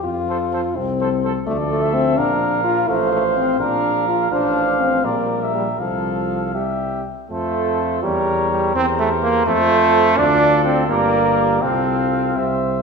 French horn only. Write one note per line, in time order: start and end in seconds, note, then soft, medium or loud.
0.03 0.77 F4 medium
0.76 1.23 C4 medium
1.46 1.57 A3 medium
1.70 1.95 A3 medium
1.94 2.18 C4 medium
2.17 2.63 D4 medium
2.64 2.90 F4 medium
2.88 3.11 A3 medium
3.12 3.23 A3 medium
3.36 3.59 C4 medium
3.60 4.07 D4 medium
4.08 4.31 F4 medium
4.31 4.82 D4 medium
4.80 5.05 C4 medium
5.04 5.54 A#3 medium
5.55 5.66 G3 medium
5.79 6.53 F3 medium
7.31 8.05 F4 medium
8.03 8.75 G4 medium
8.76 9.46 G4 medium
9.47 10.17 F4 medium
10.17 10.88 F4 medium
10.89 11.61 G4 medium
11.63 12.39 F4 soft
12.37 12.82 G4 soft